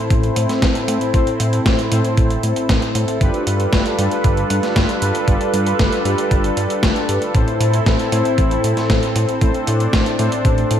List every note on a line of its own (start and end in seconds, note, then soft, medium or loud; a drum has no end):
0.00 1.11 A2 loud
0.00 1.11 C4 medium
0.00 3.17 C4 medium
0.00 1.11 E4 medium
0.00 3.17 E4 medium
0.00 1.11 A4 medium
0.00 10.80 A4 medium
0.00 1.11 C5 loud
0.10 0.30 A1 medium
0.10 kick loud
0.10 closed hi-hat medium
0.23 closed hi-hat soft
0.36 0.46 A2 medium
0.36 closed hi-hat medium
0.49 snare soft
0.49 closed hi-hat soft
0.62 0.72 A1 medium
0.62 kick loud
0.62 snare loud
0.62 closed hi-hat medium
0.75 closed hi-hat soft
0.88 0.98 A2 medium
0.88 closed hi-hat medium
1.01 closed hi-hat soft
1.14 1.24 A1 medium
1.14 1.88 A2 medium
1.14 1.88 C4 medium
1.14 1.88 E4 medium
1.14 1.88 A4 medium
1.14 1.88 C5 loud
1.14 kick loud
1.14 closed hi-hat medium
1.27 closed hi-hat soft
1.40 1.60 A2 medium
1.40 closed hi-hat medium
1.53 closed hi-hat soft
1.66 1.76 A1 medium
1.66 kick loud
1.66 snare loud
1.66 closed hi-hat medium
1.79 closed hi-hat soft
1.92 3.18 A2 loud
1.92 2.02 A2 loud
1.92 3.18 C4 medium
1.92 3.18 E4 medium
1.92 3.18 A4 medium
1.92 3.18 C5 loud
1.92 closed hi-hat medium
2.05 closed hi-hat soft
2.17 2.38 A1 medium
2.17 kick loud
2.17 closed hi-hat medium
2.30 closed hi-hat soft
2.43 2.53 A2 medium
2.43 closed hi-hat medium
2.56 closed hi-hat soft
2.69 2.79 A1 medium
2.69 kick loud
2.69 snare loud
2.69 closed hi-hat medium
2.82 closed hi-hat soft
2.95 3.05 A2 medium
2.95 closed hi-hat medium
3.08 closed hi-hat soft
3.21 3.31 G1 loud
3.21 3.95 G3 medium
3.21 7.31 G3 medium
3.21 3.95 D4 medium
3.21 7.31 D4 medium
3.21 3.95 F4 medium
3.21 7.31 F4 medium
3.21 3.95 G4 medium
3.21 3.95 B4 loud
3.21 7.31 B4 medium
3.21 kick loud
3.21 closed hi-hat medium
3.34 closed hi-hat soft
3.47 3.67 G2 medium
3.47 closed hi-hat medium
3.60 closed hi-hat soft
3.73 3.83 G1 medium
3.73 kick loud
3.73 snare loud
3.73 closed hi-hat medium
3.86 closed hi-hat soft
3.98 4.08 G2 medium
3.98 5.25 G3 loud
3.98 5.25 D4 medium
3.98 5.25 F4 medium
3.98 5.25 G4 medium
3.98 5.25 B4 loud
3.98 closed hi-hat medium
4.11 closed hi-hat soft
4.24 4.44 G1 medium
4.24 kick loud
4.24 closed hi-hat medium
4.37 closed hi-hat soft
4.50 4.60 G2 medium
4.50 closed hi-hat medium
4.63 snare soft
4.63 closed hi-hat soft
4.76 4.86 G1 medium
4.76 kick loud
4.76 snare loud
4.76 closed hi-hat medium
4.89 closed hi-hat soft
5.02 5.12 G2 medium
5.02 closed hi-hat medium
5.15 closed hi-hat soft
5.28 5.38 G1 loud
5.28 6.02 G3 loud
5.28 6.02 D4 medium
5.28 6.02 F4 medium
5.28 6.02 G4 medium
5.28 6.02 B4 loud
5.28 kick loud
5.28 closed hi-hat medium
5.41 closed hi-hat soft
5.54 5.74 G2 medium
5.54 closed hi-hat medium
5.67 closed hi-hat soft
5.79 5.89 G1 medium
5.79 kick loud
5.79 snare loud
5.79 closed hi-hat medium
5.92 closed hi-hat soft
6.05 6.15 G2 medium
6.05 7.32 G3 loud
6.05 7.31 D4 medium
6.05 7.32 F4 medium
6.05 7.32 G4 medium
6.05 7.31 B4 loud
6.05 closed hi-hat medium
6.18 closed hi-hat soft
6.31 6.51 G1 medium
6.31 kick loud
6.31 closed hi-hat medium
6.44 closed hi-hat soft
6.57 6.67 G2 medium
6.57 closed hi-hat medium
6.70 closed hi-hat soft
6.83 6.93 G1 medium
6.83 kick loud
6.83 snare loud
6.83 closed hi-hat medium
6.96 closed hi-hat soft
7.09 7.19 G2 medium
7.09 closed hi-hat medium
7.22 closed hi-hat soft
7.35 7.45 A1 loud
7.35 8.09 A2 medium
7.35 8.09 C4 medium
7.35 10.80 C4 medium
7.35 8.09 E4 medium
7.35 9.40 E4 medium
7.35 8.09 A4 medium
7.35 8.09 C5 loud
7.35 kick loud
7.35 closed hi-hat medium
7.48 closed hi-hat soft
7.60 7.80 A2 medium
7.60 closed hi-hat medium
7.74 closed hi-hat soft
7.86 7.96 A1 medium
7.86 kick loud
7.86 snare loud
7.86 closed hi-hat medium
7.99 closed hi-hat soft
8.12 9.38 A2 loud
8.12 8.22 A2 medium
8.12 9.38 C4 medium
8.12 9.38 E4 medium
8.12 9.38 A4 medium
8.12 9.38 C5 loud
8.12 closed hi-hat medium
8.25 closed hi-hat soft
8.38 8.58 A1 medium
8.38 kick loud
8.38 closed hi-hat medium
8.51 closed hi-hat soft
8.64 8.74 A2 medium
8.64 closed hi-hat medium
8.77 snare soft
8.77 closed hi-hat soft
8.90 9.00 A1 medium
8.90 kick loud
8.90 snare loud
8.90 closed hi-hat medium
9.03 closed hi-hat soft
9.16 9.26 A2 medium
9.16 closed hi-hat medium
9.29 closed hi-hat soft
9.41 9.52 A1 loud
9.41 10.16 A2 medium
9.41 10.16 C4 medium
9.41 10.80 D4 medium
9.41 10.16 E4 medium
9.41 10.16 A4 medium
9.41 10.16 C5 loud
9.41 kick loud
9.41 closed hi-hat medium
9.54 closed hi-hat soft
9.67 9.88 A2 medium
9.67 closed hi-hat medium
9.80 closed hi-hat soft
9.93 10.03 A1 medium
9.93 kick loud
9.93 snare loud
9.93 closed hi-hat medium
10.06 closed hi-hat soft
10.19 10.80 A2 medium
10.19 10.29 A2 medium
10.19 10.80 C4 medium
10.19 10.80 E4 medium
10.19 10.80 A4 medium
10.19 10.80 C5 loud
10.19 closed hi-hat medium
10.32 closed hi-hat soft
10.45 10.65 A1 medium
10.45 kick loud
10.45 closed hi-hat medium
10.58 closed hi-hat soft
10.71 10.80 A2 medium
10.71 closed hi-hat medium